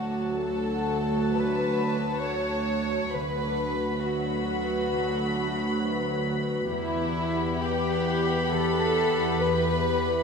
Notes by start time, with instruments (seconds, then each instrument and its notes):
Already playing: cello section D2, harp D3 A3, viola section F#3 F#4, violin section F#4 A5
0.09 harp D4
0.40 harp A4, violin section A4
0.71 harp F#5
1.01 harp A4
1.32 harp D3, violin section B4
1.63 harp A3
1.93 harp D4
2.23 harp A4, violin section C#5
2.83 harp A4
3.13 cello section D2, harp D3, viola section F#3 F#4, violin section B4 B5
3.44 harp D4
3.73 harp B3
4.02 violin section F#4, harp B4
4.32 harp F#4
4.62 harp B4
4.92 harp D3
5.23 harp D4
5.53 harp B3
5.82 harp B4
6.12 harp F#4
6.41 harp B4
6.71 cello section E2, harp E3, viola section B3 G4, violin section E4 B5
7.02 harp E4
7.31 harp B3
7.61 violin section G4, harp B4
7.92 harp G4
8.22 harp B4
8.50 harp E3, violin section A4
8.81 harp E4
9.10 harp B3
9.39 harp B4, violin section B4
9.68 harp G4